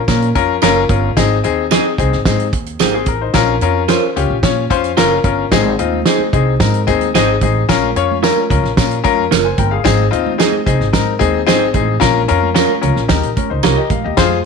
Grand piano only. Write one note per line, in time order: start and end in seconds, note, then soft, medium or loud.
0.08 0.27 C#4 medium
0.08 0.27 F4 medium
0.08 0.27 A#4 medium
0.35 0.54 C#4 medium
0.35 0.55 F4 medium
0.35 0.54 A#4 loud
0.63 0.82 C#4 loud
0.63 0.82 F4 loud
0.63 0.82 A#4 loud
0.89 1.08 C#4 medium
0.89 1.09 F4 medium
0.89 1.09 A#4 medium
1.17 1.36 C4 loud
1.17 1.36 D#4 loud
1.17 1.36 G#4 loud
1.44 1.63 C4 medium
1.44 1.63 D#4 medium
1.44 1.63 G#4 medium
1.71 1.90 C4 medium
1.71 1.91 D#4 medium
1.71 1.91 G#4 medium
1.98 2.18 C4 medium
1.98 2.18 D#4 medium
1.98 2.18 G#4 medium
2.26 2.45 C4 medium
2.26 2.45 D#4 medium
2.26 2.45 G#4 medium
2.81 2.94 A#3 medium
2.81 2.93 G4 medium
2.94 3.08 C4 medium
2.94 3.07 G#4 medium
3.08 3.21 A#4 medium
3.21 3.47 D#4 soft
3.21 3.47 C5 medium
3.34 3.53 C#4 loud
3.34 3.54 F4 medium
3.34 3.54 A#4 loud
3.62 3.81 C#4 medium
3.62 3.81 F4 medium
3.62 3.81 A#4 medium
3.88 4.08 C#4 medium
3.88 4.08 F4 medium
3.88 4.08 C5 medium
4.16 4.35 C#4 medium
4.16 4.35 F4 medium
4.16 4.35 G4 medium
4.43 4.62 C#4 medium
4.43 4.63 F4 medium
4.43 4.63 C#5 medium
4.70 4.89 C#4 medium
4.70 4.90 F4 medium
4.70 4.90 C5 loud
4.97 5.16 C#4 medium
4.97 5.17 F4 medium
4.97 5.17 A#4 loud
5.24 5.43 C#4 medium
5.24 5.44 F4 medium
5.24 5.44 A#4 medium
5.52 5.71 C4 loud
5.52 5.71 D#4 medium
5.52 5.71 G#4 loud
5.79 5.98 C4 medium
5.79 5.98 D#4 medium
5.79 5.98 F4 medium
6.07 6.25 C4 medium
6.07 6.26 D#4 medium
6.07 6.26 G#4 medium
6.33 6.52 C4 medium
6.33 6.52 D#4 medium
6.33 6.52 G#4 medium
6.60 6.79 C4 medium
6.60 6.79 D#4 medium
6.60 6.79 A#4 medium
6.87 7.06 C4 medium
6.87 7.06 D#4 medium
6.87 7.07 G#4 loud
7.15 7.34 C4 loud
7.15 7.34 D#4 loud
7.15 7.34 G#4 loud
7.43 7.61 C4 medium
7.43 7.61 D#4 medium
7.43 7.61 G#4 medium
7.69 7.88 C#4 loud
7.69 7.88 F4 loud
7.69 7.88 A#4 loud
7.96 8.15 C#4 medium
7.96 8.15 F4 medium
7.96 8.15 C#5 medium
8.23 8.42 C#4 medium
8.23 8.42 F4 medium
8.23 8.42 A#4 medium
8.50 8.69 C#4 medium
8.50 8.69 F4 medium
8.50 8.69 A#4 medium
8.77 8.96 C#4 medium
8.77 8.96 F4 medium
8.77 8.96 A#4 medium
9.04 9.23 C#4 medium
9.04 9.23 F4 medium
9.04 9.23 A#4 loud
9.45 9.58 C5 soft
9.45 9.58 G#5 medium
9.58 9.72 A#4 medium
9.58 9.71 G5 medium
9.71 9.83 G#4 medium
9.71 9.97 F5 medium
9.84 10.04 C4 loud
9.84 10.04 D#4 medium
9.84 10.04 G#4 loud
10.11 10.31 C4 medium
10.11 10.31 D#4 medium
10.11 10.31 F4 medium
10.38 10.58 C4 medium
10.38 10.58 D#4 medium
10.38 10.58 G#4 medium
10.66 10.85 C4 medium
10.66 10.85 D#4 medium
10.66 10.86 G#4 medium
10.93 11.12 C4 medium
10.93 11.12 D#4 medium
10.93 11.12 A#4 medium
11.19 11.39 C4 loud
11.19 11.39 D#4 medium
11.19 11.39 G#4 loud
11.47 11.66 C4 loud
11.47 11.66 D#4 loud
11.47 11.66 G#4 loud
11.74 11.93 C4 medium
11.74 11.93 D#4 medium
11.74 11.94 G#4 medium
12.00 12.20 C#4 medium
12.00 12.20 F4 medium
12.00 12.20 A#4 loud
12.28 12.47 C#4 medium
12.28 12.48 F4 medium
12.28 12.48 A#4 loud
12.54 12.74 C#4 medium
12.54 12.74 F4 medium
12.54 12.74 A#4 medium
12.81 13.01 C#4 medium
12.81 13.01 F4 medium
12.81 13.02 A#4 medium
13.08 13.28 D#4 medium
13.08 13.28 G4 medium
13.08 13.28 A#4 medium
13.36 13.50 C#4 soft
13.36 13.50 A#4 medium
13.50 13.63 D#4 soft
13.50 13.63 C5 medium
13.63 13.77 F4 medium
13.63 13.76 C#5 medium
13.63 14.14 A#5 medium
13.76 13.90 G4 medium
13.76 13.90 D#5 medium
13.91 14.04 F5 medium
14.04 14.30 G4 soft
14.04 14.30 D#5 medium
14.17 14.36 F4 loud
14.17 14.37 G#4 medium
14.17 14.37 C5 loud